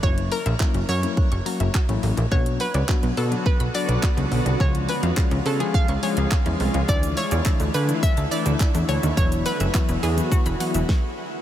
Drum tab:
HH |-xox-xox-xox-xox|-xox-xox-xox-xox|-xox-xox-xox-xox|-xox-xox-xox-xox|
SH |----------------|----------------|----------------|xxxxxxxxxxxxxxxx|
CP |----x-------x---|----x-------x---|----x-------x---|----x-------x---|
SD |----------------|----------------|----------------|----------------|
BD |o---o---o---o---|o---o---o---o---|o---o---o---o---|o---o---o---o---|

HH |-xox-xox-xox----|
SH |xxxxxxxxxxxx----|
CP |----x-----------|
SD |------------o---|
BD |o---o---o---o---|